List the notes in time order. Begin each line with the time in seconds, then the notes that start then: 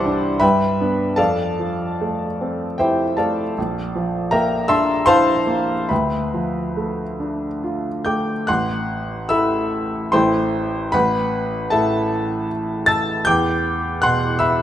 Already playing: C2 E3 G3 C5 D5 E5 F#5 G5 A5 B5 C6 D6 E6
0.06 D4
0.40 G2 B4 E5 G5 B5
0.81 B3 D4
1.16 F2 A4 D5 F5 A5
1.59 F3
2.01 A3
2.41 C4
2.78 E4 G4 C5 E5 G5
3.17 A3 A4 D5 F5 A5
3.58 A#1
3.95 F3
4.31 A#3 A#4 E5 G5 A#5
4.68 D4 E5 A5 C6 E6
5.06 E4 C5 F5 A5 C6
5.47 A#3
5.89 D2 B4 E5 G5 B5
6.34 F3
6.77 A3
7.20 D4
7.64 F4
8.05 A3 G5 D6 G6
8.47 A1 F#5 C6 F#6
9.29 E4 A4 E5 B5 E6
10.12 A1 E4 A4 C5 G5 C6
10.92 A1 B4 F#5 B5
11.70 A2 A4 E5 A5
12.86 A5 E6 A6
13.25 E2 G5 D6 G6
14.02 B2 F#5 C6 F#6
14.39 E5 B5 E6